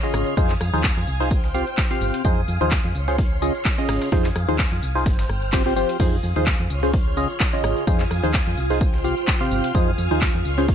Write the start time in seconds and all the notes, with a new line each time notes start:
Already playing: C#5 C6 F6
0.03 C#3 C#4 F4 G#4 D#5
0.14 G#1, cross-stick, open hi-hat, tambourine
0.27 closed hi-hat
0.37 F2 F3 D#4 F4 G#4 C5 F5 G#5 D#6, kick, closed hi-hat, tambourine
0.50 clap
0.61 F2, cross-stick, open hi-hat, tambourine
0.74 D#2 F3 D#4 F4 G#4 C5, open hi-hat
0.84 kick, snare, clap, closed hi-hat, tambourine
0.97 F2, snare
1.08 C2, open hi-hat, tambourine
1.20 D#4 F4 G#4 C5, snare, closed hi-hat
1.31 C5 G5 F6, kick, closed hi-hat, tambourine
1.44 snare
1.54 C3 C4 F4 G4 F5, open hi-hat, tambourine
1.67 closed hi-hat
1.77 kick, snare, clap, closed hi-hat, tambourine
1.91 C3 C4 F4 G4 F5, snare
2.01 G1, open hi-hat, tambourine
2.14 closed hi-hat
2.25 F2 F3 D#4 F4 G#4 C5 F5 G#5 D#6, kick, closed hi-hat, tambourine
2.48 F2, open hi-hat, tambourine
2.61 D#2 F3 D#4 F4 G#4 C5, closed hi-hat
2.71 kick, snare, clap, closed hi-hat, tambourine
2.85 F2
2.95 C#2 C#5 C6 F6, open hi-hat, tambourine
3.08 C#3 C#4 F4 G#4 C5, snare, closed hi-hat
3.18 kick, closed hi-hat, open hi-hat
3.42 C#3 C#4 F4 G#4 D#5, open hi-hat, tambourine
3.55 closed hi-hat
3.65 kick, snare, clap, closed hi-hat, tambourine
3.78 C#3 C#4 F4 G#4 D#5
3.89 G#1, cross-stick, snare, open hi-hat, tambourine
4.02 snare, closed hi-hat, tambourine
4.12 F2 F3 D#4 F4 G#4 C5 F5 G#5 D#6, kick, snare, closed hi-hat, tambourine
4.25 snare, clap, tambourine
4.36 F2, cross-stick, open hi-hat, tambourine
4.48 D#2 F3 D#4 F4 G#4 C5, open hi-hat
4.59 kick, snare, clap, closed hi-hat, tambourine
4.72 F2, snare
4.83 C2, open hi-hat, tambourine
4.95 D#4 F4 G#4 C5, snare, closed hi-hat
5.06 G1 C5 G5 F6, kick, snare, closed hi-hat, tambourine
5.19 snare, tambourine
5.29 G1, cross-stick, open hi-hat
5.42 closed hi-hat
5.52 C3 C4 F4 G4 C5, kick, snare, clap, closed hi-hat, tambourine
5.66 C3 C4 F4 G4 C5, snare
5.76 F3 C4 F4 G4 C5, open hi-hat, tambourine
5.89 closed hi-hat
6.00 F2 F3 D#4 F4 G#4 C5 F5 G#5 D#6, kick, closed hi-hat, tambourine, crash
6.23 F2, open hi-hat, tambourine
6.36 D#2 F3 D#4 F4 G#4 C5, closed hi-hat
6.46 kick, snare, clap, closed hi-hat, tambourine
6.60 F2
6.70 C#2 C#5 C6 F6, open hi-hat, tambourine
6.83 C#3 C#4 F4 G#4 C5, snare, closed hi-hat
6.94 kick, closed hi-hat, open hi-hat
7.17 C#3 C#4 F4 G#4 D#5, open hi-hat, tambourine
7.30 closed hi-hat
7.40 kick, snare, clap, closed hi-hat, tambourine
7.53 C#3 C#4 F4 G#4 D#5
7.64 G#1, cross-stick, open hi-hat, tambourine
7.77 closed hi-hat
7.87 F2 F3 D#4 F4 G#4 C5 F5 G#5 D#6, kick, closed hi-hat, tambourine
8.00 clap
8.11 F2, cross-stick, open hi-hat, tambourine
8.23 D#2 F3 D#4 F4 G#4 C5, open hi-hat
8.34 kick, snare, clap, closed hi-hat, tambourine
8.47 F2, snare
8.58 C2, open hi-hat, tambourine
8.70 D#4 F4 G#4 C5, snare, closed hi-hat
8.81 C5 G5 F6, kick, closed hi-hat, tambourine
8.94 snare
9.04 C3 C4 F4 G4 F5, open hi-hat, tambourine
9.17 closed hi-hat
9.28 kick, snare, clap, closed hi-hat, tambourine
9.41 C3 C4 F4 G4 F5, snare
9.51 G1, open hi-hat, tambourine
9.64 closed hi-hat
9.75 F2 F3 D#4 F4 G#4 C5 F5 G#5 D#6, kick, closed hi-hat, tambourine
9.86 A#4
9.98 F2, open hi-hat, tambourine
10.07 D#5
10.11 D#2 F3 D#4 F4 G#4 C5, closed hi-hat
10.21 kick, snare, clap, closed hi-hat, tambourine
10.35 F2
10.45 C#2 C#5 C6 F6, open hi-hat, tambourine
10.58 C#3 C#4 F4 G#4 C5, snare, closed hi-hat
10.68 kick, closed hi-hat, open hi-hat